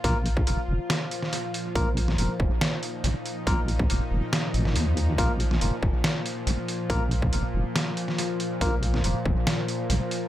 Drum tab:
HH |x-x-x---x-x-x-x-|x-x-x---x-x-x-x-|x-x-x---x-x-x-x-|x-x-x---x-x-x-x-|
SD |--------o--o----|---o----o-------|--------o--o----|---o----o-------|
BD |o--o------------|o-----o---------|o--o------------|o-----o---------|

HH |x-x-x---x-x-x-x-|x-x-x---x-x-x-x-|
SD |--------o--o----|---o----o-------|
BD |o--o------------|o-----o---------|